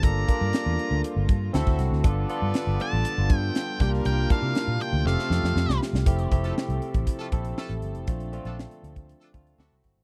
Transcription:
Already playing: F3
0.02 G1 D3 G3 A#3 D4 F4 G4 A4 A#4 D5 A#5, kick, closed hi-hat
0.28 A#3 D4 F4 A#4, kick, closed hi-hat
0.41 G2
0.53 snare, closed hi-hat
0.66 E2
0.79 closed hi-hat
0.91 D2
1.04 closed hi-hat
1.16 G1
1.29 G2, kick, closed hi-hat
1.53 D2 F#3 A3 C4 E4 F#4 A4 C5 E5, snare, closed hi-hat
1.67 D2, kick, snare
1.79 C2, snare, closed hi-hat
1.91 D2, snare
2.03 G1 F3 G3 B3 D4 F4 G4 A4 B4 D5, kick, closed hi-hat
2.29 B3 D4 F4 A4, closed hi-hat
2.42 G2
2.54 snare, closed hi-hat
2.67 G1
2.80 A5, closed hi-hat
2.93 A1
3.05 closed hi-hat
3.18 G1
3.30 G2, kick, closed hi-hat
3.38 G5
3.55 G5, snare, closed hi-hat
3.80 C2 C3 A#3 D4 F4 G4 A#4 G5, kick, snare, closed hi-hat
3.94 snare
4.05 C2 G5, closed hi-hat
4.30 A#3 D4 E4 F5 A5, kick, closed hi-hat
4.37 F4
4.42 C3
4.55 snare, closed hi-hat
4.68 A#2
4.81 G5, closed hi-hat
4.93 D2
5.05 F1 F3 A3 C4 F4 G4 A4 F5, snare
5.19 snare
5.30 F2, snare
5.43 F2, snare
5.56 F2, snare
5.68 C2, snare
5.83 snare
5.93 C2, snare
6.06 F1 C3 F3 A3 C4 E4 G4 A4, kick, closed hi-hat
6.19 closed hi-hat
6.31 F1 A3 C4 E4 G4, kick, closed hi-hat
6.43 A3 F4 A4, closed hi-hat
6.58 snare
6.69 C2, closed hi-hat
6.82 closed hi-hat
6.94 A1, kick, closed hi-hat
7.07 kick, closed hi-hat
7.19 A3 F4 A4, closed hi-hat
7.32 A#1 A3 C4 E4 A4, kick, closed hi-hat
7.45 closed hi-hat
7.57 A3 F4 A4, snare
7.69 A1, closed hi-hat
7.82 G1, closed hi-hat
7.95 F1, closed hi-hat
8.07 A#1 A#2 D3 A3 C4 D4 F4, kick, closed hi-hat
8.20 closed hi-hat
8.33 A3 C4 D4 F4, closed hi-hat
8.45 A#1 D4 F4 A4, closed hi-hat
8.59 snare
8.71 closed hi-hat
8.83 D2, closed hi-hat
8.96 kick, closed hi-hat
9.09 closed hi-hat
9.21 D4 F4 A4, closed hi-hat
9.33 D2 A3 C4 D4 F4, kick, closed hi-hat
9.47 closed hi-hat
9.58 D2 F#3 A3 C4 D4 E4 F#4 A4, snare
9.72 C2, closed hi-hat
9.84 G1, kick, snare, closed hi-hat
9.97 A1

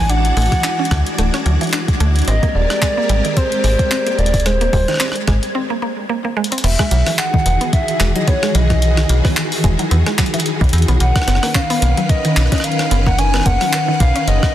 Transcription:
Already playing: A1 E3 G#3 D4 F#4 D5 G#5 G#6
0.09 D4 F#5, closed hi-hat
0.25 closed hi-hat
0.37 A1 A3, open hi-hat
0.42 open hi-hat
0.46 open hi-hat
0.52 kick, cross-stick, closed hi-hat, open hi-hat
0.55 open hi-hat
0.60 D4, clap, closed hi-hat, open hi-hat
0.79 C#4
0.85 closed hi-hat
0.91 D2, kick, cross-stick, closed hi-hat
1.06 closed hi-hat
1.18 D1 A3, closed hi-hat
1.34 C#4, cross-stick, closed hi-hat
1.46 D2 F#3, closed hi-hat
1.61 E3, closed hi-hat
1.63 closed hi-hat
1.67 closed hi-hat
1.69 closed hi-hat
1.71 D4, clap, closed hi-hat
1.73 closed hi-hat
1.88 kick, closed hi-hat
2.00 D2 A3, closed hi-hat
2.16 closed hi-hat
2.19 closed hi-hat
2.22 closed hi-hat
2.25 G#3 C4 G4 A#4, closed hi-hat
2.28 G#1 D#5, closed hi-hat
2.43 A#3, kick, closed hi-hat
2.49 D#5
2.55 D#1 D5
2.70 cross-stick, closed hi-hat
2.82 G#3, kick, clap, closed hi-hat
2.97 A#3
3.09 G#1 G3, closed hi-hat
3.25 D#3, closed hi-hat
3.37 C4 C5, kick, closed hi-hat
3.52 closed hi-hat
3.64 G#1 G#3, open hi-hat
3.79 kick, closed hi-hat
3.91 C4, clap, closed hi-hat
4.07 A#3, closed hi-hat
4.19 D#1 D5, closed hi-hat
4.26 closed hi-hat
4.34 kick, closed hi-hat, open hi-hat
4.40 closed hi-hat
4.46 G#3 C5, cross-stick, closed hi-hat
4.61 A#3, closed hi-hat
4.73 D#1 G3, kick, open hi-hat
4.88 D#3, cross-stick, closed hi-hat
4.91 cross-stick
4.94 cross-stick
4.97 cross-stick
5.00 C4, cross-stick, clap, closed hi-hat
5.04 cross-stick
5.08 cross-stick
5.12 cross-stick, closed hi-hat
5.28 G#1 G#3, kick, cross-stick, closed hi-hat
5.43 closed hi-hat
5.55 C4
5.70 A#3
5.82 A#3
6.09 A#3
6.25 A#3
6.37 G#3
6.44 closed hi-hat
6.52 C4, closed hi-hat
6.58 closed hi-hat
6.64 E1 D#3 E3 B3 F#4 G#4 E5, closed hi-hat, crash
6.79 G#3, kick, cross-stick, closed hi-hat
6.91 B1 F#3, closed hi-hat
7.07 E3, cross-stick, open hi-hat
7.18 F#5, clap, closed hi-hat
7.34 D#3, kick
7.46 E1, closed hi-hat
7.61 B3, closed hi-hat
7.73 E5, kick, closed hi-hat
7.88 closed hi-hat
8.00 E1 G#3, cross-stick, clap, closed hi-hat
8.16 F#3 D#5, closed hi-hat
8.27 B3 C#5, kick, closed hi-hat
8.43 G#3, cross-stick, closed hi-hat
8.55 B1 F#3 D#5, closed hi-hat
8.70 E3, kick, cross-stick, closed hi-hat
8.82 closed hi-hat
8.97 D#3, cross-stick, closed hi-hat
9.09 B1, closed hi-hat
9.25 B3, kick, cross-stick, open hi-hat
9.37 clap, closed hi-hat
9.52 open hi-hat
9.64 E1 G#3, kick, closed hi-hat
9.79 F#3, closed hi-hat
9.91 E2 B3, closed hi-hat
10.06 G#3, cross-stick, closed hi-hat
10.18 F#3, kick, clap, closed hi-hat
10.26 closed hi-hat
10.34 E3, closed hi-hat
10.40 closed hi-hat
10.46 closed hi-hat
10.61 B1 D#3, kick, closed hi-hat
10.64 closed hi-hat
10.69 E2, closed hi-hat
10.73 closed hi-hat
10.78 closed hi-hat
10.82 closed hi-hat
10.88 B1 B3, closed hi-hat
11.00 B1 D#3 C#4 A#4 B4 F#5, closed hi-hat
11.16 kick, cross-stick, closed hi-hat
11.22 cross-stick
11.28 F#1 B3, cross-stick, closed hi-hat
11.35 cross-stick
11.43 A#3, cross-stick, open hi-hat
11.55 C#4 F5, kick, clap
11.70 B3, open hi-hat
11.82 B1 A#3, closed hi-hat
11.97 F#3, closed hi-hat
12.09 D#5, kick, closed hi-hat
12.25 D#3, closed hi-hat
12.37 B1, cross-stick, clap
12.42 cross-stick
12.46 cross-stick
12.52 C#4 D#5, kick, cross-stick, closed hi-hat
12.55 cross-stick, closed hi-hat
12.60 cross-stick
12.64 F5, closed hi-hat
12.72 closed hi-hat
12.79 cross-stick, closed hi-hat
12.91 F#1 B3, closed hi-hat
13.07 A#3 F#5, kick, cross-stick
13.19 C#4 G#5, closed hi-hat
13.34 B3, cross-stick, closed hi-hat
13.36 cross-stick
13.40 cross-stick
13.42 cross-stick
13.44 F#1 A#3 F#5, kick, cross-stick, closed hi-hat
13.61 F#3, cross-stick, open hi-hat
13.73 clap, closed hi-hat
13.88 D#3
14.00 B1 F5, kick, closed hi-hat
14.16 C#4, closed hi-hat
14.28 F#1 D#5, closed hi-hat
14.43 kick, cross-stick

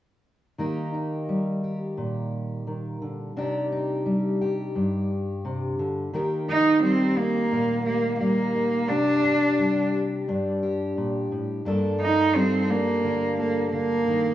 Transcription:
0.58 D#3 A#3 D#4 G4
0.94 D#4
1.29 G3
1.64 G4
1.97 A#2
2.67 D#3
3.02 D3
3.36 C3 D4 D#4 G4
3.72 D#4
4.06 G3
4.41 G4
4.75 G2
5.45 C3
5.79 D3
6.13 D#3 A#3 D#4 G4
6.48 D#4
6.82 G3 C4 G4
7.17 A#3 D#4
7.51 A#2 A#3
7.85 A#3 G4
8.19 G3 A#3
8.55 D#4
8.89 C3 D4 G4
9.24 G4
9.58 G3 G4
9.94 G4
10.28 G2 D4
10.63 G4
10.97 A#2
11.32 A2
11.65 G2 A#3 D4 A4
12.01 D#4
12.35 G3 C4 A4
12.70 A#3 D4
13.04 D3 A#3
13.39 A#3 A4
13.73 D3 A#3
14.08 D#3

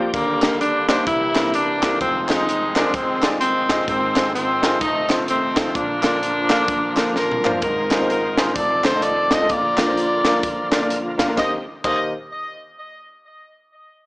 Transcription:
Already playing: F3 A#3 D4 G4
0.14 D#2 D3 G3 A#3, kick, closed hi-hat
0.41 A#3 D4 D#4 G4 A#4, snare, clap, closed hi-hat
0.61 D4, closed hi-hat
0.88 A#3 D4 D#4 G4 C5, snare, clap, closed hi-hat
1.07 C2 C3 E3 G3 A#3 C4 E4, kick, closed hi-hat
1.35 A#3 C4 E4 G4 A#4, snare, clap, closed hi-hat
1.54 G3 A#3 D4, closed hi-hat
1.82 A#3 C4 E4 G4 A#4, kick, snare, clap, closed hi-hat
2.00 F1 F2 D#3 G#3 C4 F4, kick, closed hi-hat
2.28 G#3 C4 D#4 F4 G#4 C5, snare, clap, closed hi-hat
2.49 closed hi-hat
2.76 C4 D4 D#4 F4 G#4 A#4, snare, clap, closed hi-hat
2.94 D#3 G#3 C4, kick, closed hi-hat
3.22 C4 D#4 F4 G#4 D5, snare, clap, closed hi-hat
3.41 D#3 G#3 C4, closed hi-hat
3.69 C4 D#4 F4 G#4 D#5, kick, snare, clap, closed hi-hat
3.87 G#1 G#2 D#3 F3 C4, kick, closed hi-hat
4.15 C4 D#4 F4 G#4 C5, snare, clap, closed hi-hat
4.35 D#3 F3 C4, closed hi-hat
4.61 C4 D#4 F4 G#4 A#4, snare, clap, closed hi-hat
4.81 F1 F2 A3 C4 D#4, kick, closed hi-hat
5.09 C4 D#4 F4 A4 C5, snare, clap, closed hi-hat
5.28 D#3 A3 C4, closed hi-hat
5.56 C4 D#4 F4 A4 C5, kick, snare, clap, closed hi-hat
5.74 A#1 A#2 D3 F3 A#3 D4 F4, kick, closed hi-hat
6.02 A#3 D4 F4 A#4 D5, snare, clap, closed hi-hat
6.23 closed hi-hat
6.49 A#3 D4 F4 A#4 F5, snare, clap, closed hi-hat
6.68 kick, closed hi-hat
6.96 A#3 D4 F4 A#4 F5, snare, clap, closed hi-hat
7.15 D4 F4 A#4, snare
7.32 mid tom
7.44 A#3 D4 F4 A#4 C5, clap, floor tom
7.62 G#1 G#2 D#3 G#3 C4 D#4 F4 A#4, kick, closed hi-hat
7.91 C4 D#4 F4 G#4 C5, snare, clap, closed hi-hat
8.00 C4 D#4 F4 G#4 C5
8.09 D#4 F4 A#4, closed hi-hat
8.37 C4 D#4 F4 G#4 C5, snare, clap, closed hi-hat
8.55 F1 F2 A3 C4 A4 D5, kick, closed hi-hat
8.84 C4 D#4 F4 A4 C5, snare, clap, closed hi-hat
8.94 C4 D#4 F4 A4 D#5
9.02 D5, closed hi-hat
9.31 C4 D#4 F4 A4 D5 D#5, kick, snare, clap, closed hi-hat
9.40 C4 D#4 F4 A4 D#5
9.49 A#1 A#2 D3 F3 A#3 F4 A#4 D5, kick, closed hi-hat
9.77 A#3 D4 F4 A#4 D5, snare, clap, closed hi-hat
9.87 A#3 D4 F4 A#4 C5
9.98 closed hi-hat
10.25 A#3 D4 F4 A#4 D5, snare, clap, closed hi-hat
10.43 kick, closed hi-hat
10.71 A#3 D4 F4 A#4 D5, snare, clap, closed hi-hat
10.81 A#3 D4 F4 A#4 D5
10.90 closed hi-hat
11.18 A#3 D4 F4 A#4 F5, kick, snare, clap, closed hi-hat
11.27 A#3 D4 F4 A#4 F5
11.37 D#2 D#3 A#3 C4 D#4 G4 A#4 C5 D#5, kick, snare, clap
11.84 D#2 D#4 G4 A#4 C5 D#5, kick, clap, crash

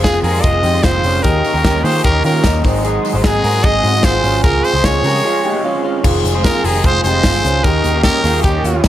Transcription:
Already playing: D#3 G#3 C4 F4 G#4 F5 C6 D#6
0.03 F1 F4 G#4, kick, snare, closed hi-hat, tambourine
0.22 F2 D#3 G#3 C4 F4 G4 G#4 A#4, open hi-hat
0.42 F1 D#3 G#3 C4 F4 G#4 D#5, kick, closed hi-hat, tambourine
0.46 F4
0.63 F2 D#4 G4, open hi-hat, tambourine
0.74 F2 C3 D#3 G#3 C4 F4
0.83 F1 C4 F4 C5, kick, snare, closed hi-hat, tambourine
0.93 D#3 G#3 C4 F4
1.03 F1 C#4 F4, open hi-hat, tambourine
1.23 D#2 D#3 A#3 C#4 D#4 G4 A#4 G5 C#6, kick, closed hi-hat, tambourine
1.44 open hi-hat, tambourine
1.53 D#2 A#3 C#4 G4 A#4
1.64 D#2 D#4 G4, kick, snare, closed hi-hat, tambourine
1.83 D#3 A#3 C#4 F4 G4 G#4 C5, open hi-hat, tambourine
2.03 D#2 D#3 A#3 C#4 D#4 G4 A#4, kick, closed hi-hat
2.24 D#3 C#4 F4 A#4, open hi-hat, tambourine
2.34 D#3 A#3 C#4 G4
2.44 D#2 A#3 D#4, kick, snare, closed hi-hat, tambourine
2.53 A#3 C#4 G4
2.62 G#1 G#2 D#3 F#3 G#3 C4 D#4 G#4 F#5 C6 D#6, kick, open hi-hat, tambourine
2.84 D#4 G#4, closed hi-hat, tambourine
3.05 open hi-hat, tambourine
3.14 G#1 F#3 G#3 C4 G#4 C5
3.24 G#1 D#4 G#4, kick, snare, closed hi-hat, tambourine
3.43 G#2 F#3 G#3 C4 F#4 G#4 A#4, open hi-hat
3.63 G#1 F#3 G#3 C4 D#4 G#4 D#5, kick, closed hi-hat, tambourine
3.83 G#2 D#4 F#4, open hi-hat, tambourine
3.94 G#2 D#3 F#3 G#3 C4 G#4
4.03 G#1 C4 F4 C5, kick, snare, closed hi-hat, tambourine
4.14 F#3 G#3 C4 G#4
4.23 G#1 C#4 F4, open hi-hat, tambourine
4.43 C#2 F3 G#3 C4 F4 G#4 A#4 F5 C#6, kick, closed hi-hat, tambourine
4.64 C5, open hi-hat, tambourine
4.73 C#2 G#3 C4 G#4 C5
4.84 C#2 F4 G#4 C#5, kick, snare, closed hi-hat, tambourine
5.03 C#3 F3 G#3 C4 G4 G#4 A#4, open hi-hat, tambourine
5.23 F3 G#3 F4 G#4
5.44 D#4 G4
5.54 C#3 F3 G#3 C4 G#4
5.64 C#4 F4
5.74 G#3 C4 G#4
5.84 C#4 F4
6.03 F1 D#3 G#3 C4 F4 G#4 F5 C6 D#6, kick, crash, tambourine
6.24 F1, hi-hat pedal, open hi-hat, tambourine
6.34 D#3 G#3 C4 G#4 C5
6.44 F4 G#4 A#4, kick, snare, hi-hat pedal, open hi-hat, tambourine
6.63 F1 D#3 G#3 C4 G4 G#4 A#4, hi-hat pedal, open hi-hat, tambourine
6.82 F1 D#3 G#3 C4 F4 G#4 C5, kick, hi-hat pedal, open hi-hat, tambourine
7.04 F1 D#4 G4 C5, hi-hat pedal, open hi-hat, tambourine
7.12 D#3 G#3 C4 G#4
7.23 G1 C4 F4, kick, snare, hi-hat pedal, open hi-hat, tambourine
7.33 D#3 G#3 C4 G#4
7.44 C#2 C#4 F4, hi-hat pedal, open hi-hat, tambourine
7.63 D#2 D#3 A#3 C#4 D#4 G4 A#4 G5 C#6, kick, hi-hat pedal, open hi-hat, tambourine
7.84 D#2, hi-hat pedal, open hi-hat, tambourine
7.93 A#3 C#4 G4 A#4
8.03 D#4 G4 A#4, kick, snare, hi-hat pedal, open hi-hat, tambourine
8.23 D#2 D#3 A#3 C#4 F4 G4 G#4, hi-hat pedal, open hi-hat
8.42 D#2 D#3 A#3 C#4 D#4 G4, kick, hi-hat pedal, open hi-hat, tambourine
8.64 D#2 C#4 F4, hi-hat pedal, open hi-hat, tambourine
8.72 A#3 C#4 G4
8.84 D#2 D#4, kick, snare, hi-hat pedal, open hi-hat, tambourine

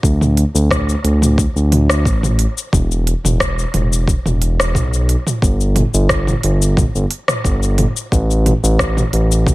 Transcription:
0.03 D2, kick, cabasa
0.21 mid tom, cabasa
0.37 open hi-hat
0.55 D2, cabasa
0.71 kick, cross-stick, mid tom, cabasa
0.89 cabasa
1.04 D2, open hi-hat
1.22 mid tom, cabasa
1.38 kick, cabasa
1.56 D2, cabasa
1.72 mid tom, open hi-hat
1.90 cross-stick, cabasa
2.05 A1, kick, cabasa
2.23 mid tom, cabasa
2.39 open hi-hat
2.58 cabasa
2.73 E1, kick, mid tom, cabasa
2.92 cabasa
3.07 open hi-hat
3.24 E1, mid tom, cabasa
3.40 kick, cross-stick, cabasa
3.59 cabasa
3.74 E1, mid tom, open hi-hat
3.93 cabasa
4.08 kick, cabasa
4.25 E1, mid tom, cabasa
4.42 open hi-hat
4.60 cross-stick, cabasa
4.75 B1, kick, mid tom, cabasa
4.94 cabasa
5.09 open hi-hat
5.27 mid tom, cabasa
5.42 G1, kick, cabasa
5.61 cabasa
5.76 mid tom, open hi-hat
5.94 G1, cabasa
6.09 kick, cross-stick, cabasa
6.27 mid tom, cabasa
6.43 G1, open hi-hat
6.62 cabasa
6.77 kick, mid tom, cabasa
6.95 G1, cabasa
7.11 open hi-hat
7.28 cross-stick, mid tom, cabasa
7.45 G1, kick, cabasa
7.63 cabasa
7.78 mid tom, open hi-hat
7.97 cabasa
8.12 A1, kick, cabasa
8.31 cabasa
8.46 mid tom, open hi-hat
8.63 A1, cabasa
8.79 kick, cross-stick, cabasa
8.97 mid tom, cabasa
9.13 A1, open hi-hat
9.32 cabasa
9.47 kick, mid tom, cabasa

